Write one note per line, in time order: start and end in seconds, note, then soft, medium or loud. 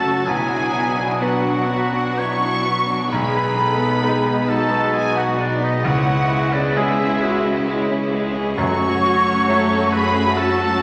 0.00 0.24 F#1 medium
0.00 0.31 F#2 medium
0.00 3.09 F#3 medium
0.00 0.23 A3 medium
0.00 0.24 A3 medium
0.00 0.32 A3 medium
0.00 0.24 C#4 medium
0.00 0.31 C#4 medium
0.00 0.24 F#4 medium
0.00 0.28 F#4 medium
0.00 3.08 F#4 medium
0.00 3.16 F#4 medium
0.00 0.28 A4 medium
0.00 0.32 A4 medium
0.00 0.32 C#5 medium
0.00 3.01 F#5 medium
0.00 0.27 A5 loud
0.00 0.28 A5 medium
0.00 0.32 C#6 medium
0.04 0.31 C#3 medium
0.04 0.28 C#4 medium
0.26 1.18 B1 medium
0.26 5.81 B1 medium
0.26 3.12 B2 medium
0.26 3.09 F#3 medium
0.26 5.80 B3 medium
0.26 0.50 B3 medium
0.26 3.09 D4 medium
0.26 1.21 E4 medium
0.26 1.20 G#4 loud
0.26 1.20 G#5 loud
0.26 1.19 G#5 medium
0.50 2.65 B3 soft
0.50 0.74 D4 medium
0.74 0.98 B3 medium
0.74 1.20 D4 medium
0.98 1.21 D4 medium
0.98 2.17 B4 medium
1.19 1.45 B3 medium
1.19 3.09 B3 medium
1.19 2.41 D4 medium
1.19 1.70 D4 medium
1.19 3.09 D4 medium
1.19 2.20 F#4 medium
1.19 3.09 B4 medium
1.19 2.16 F#5 medium
1.19 2.20 F#5 medium
1.45 1.69 D4 medium
1.67 1.93 B3 medium
1.67 2.18 F#4 medium
1.67 4.48 B5 medium
1.93 2.18 D4 medium
2.16 2.42 B3 medium
2.16 2.67 E4 medium
2.16 3.80 B4 medium
2.16 2.85 C#5 medium
2.16 3.12 C#6 loud
2.16 2.91 C#6 medium
2.41 2.65 D4 medium
2.41 3.16 D4 medium
2.65 2.89 B3 medium
2.65 5.61 B3 medium
2.65 3.13 F#4 medium
2.86 3.11 D4 medium
2.91 3.17 F#3 medium
3.09 4.01 B1 medium
3.09 5.88 B2 medium
3.09 3.32 G#3 medium
3.09 5.84 G#3 medium
3.09 8.53 B3 medium
3.09 3.55 D#4 medium
3.09 5.68 D#4 medium
3.09 4.51 B4 medium
3.09 4.48 B5 loud
3.09 4.47 B5 medium
3.13 3.58 G#4 medium
3.33 3.57 B3 medium
3.56 3.80 D#4 medium
3.56 5.38 D#4 medium
3.56 4.04 A4 medium
3.80 4.03 B3 medium
3.80 5.16 B4 medium
4.03 4.26 G#3 medium
4.03 5.80 B3 medium
4.03 5.80 D#4 medium
4.03 4.50 G#4 medium
4.03 5.81 B4 medium
4.27 4.49 B3 medium
4.27 4.71 D#5 medium
4.48 4.73 D#4 medium
4.48 5.85 F#4 medium
4.48 4.96 A4 medium
4.48 4.94 A5 medium
4.48 4.96 A5 medium
4.48 5.88 B5 medium
4.72 4.95 B3 medium
4.72 5.88 D#5 medium
4.94 5.17 G#3 medium
4.94 5.19 G#4 medium
4.94 6.29 G#4 medium
4.94 5.17 G#5 loud
4.94 5.18 G#5 medium
5.16 5.39 B3 medium
5.16 5.40 F#4 medium
5.16 5.88 B4 medium
5.16 5.40 F#5 loud
5.16 5.41 F#5 medium
5.38 5.65 D4 medium
5.38 5.61 D#4 medium
5.38 5.88 D#4 medium
5.38 5.62 D5 loud
5.43 5.64 D5 medium
5.61 5.84 B3 medium
5.61 5.88 B3 medium
5.61 5.88 D#4 medium
5.61 5.85 D#5 loud
5.61 5.85 D#5 medium
5.83 8.57 C#2 loud
5.83 6.72 C#2 medium
5.83 8.61 C#3 medium
5.83 7.17 C#3 loud
5.83 6.04 G#3 medium
5.83 8.53 G#3 medium
5.83 10.82 C#4 medium
5.83 8.56 E4 medium
5.83 6.74 E4 medium
5.83 6.55 F#4 loud
5.83 6.52 F#5 loud
5.87 6.53 F#5 loud
6.07 6.29 C#4 medium
6.07 6.52 C#4 medium
6.29 6.52 G#3 medium
6.29 7.88 G#4 medium
6.53 6.75 C#4 medium
6.53 8.11 C#4 medium
6.53 6.79 D4 medium
6.53 6.75 D5 medium
6.53 6.76 D5 medium
6.74 6.97 G#3 medium
6.74 8.54 G#3 medium
6.74 8.54 C#4 medium
6.74 7.68 E4 medium
6.74 7.21 G#4 medium
6.74 8.54 G#4 medium
6.74 7.20 C#5 medium
6.74 7.66 E5 loud
6.74 7.68 E5 medium
6.98 7.21 C#4 medium
6.98 7.43 G#5 medium
7.20 7.43 G#3 medium
7.20 7.67 F#4 medium
7.20 7.65 C#5 medium
7.44 7.67 C#4 medium
7.44 8.61 G#5 medium
7.66 7.89 G#3 medium
7.66 8.12 E4 medium
7.66 9.69 C#5 medium
7.89 8.12 C#4 medium
7.89 8.61 G#4 medium
8.12 8.35 G#3 medium
8.12 9.02 C#4 medium
8.12 8.57 G#4 medium
8.34 8.61 G#3 medium
8.34 8.55 C#4 medium
8.56 10.82 F#2 medium
8.56 9.89 F#2 loud
8.56 9.45 F#2 medium
8.56 10.82 F#2 loud
8.56 10.82 F#3 loud
8.56 10.82 A3 loud
8.56 10.82 C#4 loud
8.56 10.82 F#4 medium
8.56 9.47 F#4 loud
8.56 9.94 C#5 loud
8.56 9.89 C#6 loud
8.56 9.90 C#6 loud
8.80 10.82 F#3 medium
9.03 10.82 C#4 medium
9.25 10.82 A3 medium
9.48 10.82 F#3 medium
9.48 10.82 A3 medium
9.48 10.82 C#4 medium
9.48 10.36 F#4 medium
9.48 9.93 A4 loud
9.70 10.14 C#5 medium
9.92 10.37 G#4 loud
9.92 10.39 B4 loud
9.92 10.82 F#5 medium
9.92 10.37 B5 loud
9.92 10.39 B5 loud
10.37 10.82 F#4 medium
10.37 10.82 A4 loud
10.37 10.82 A5 loud
10.62 10.82 A4 medium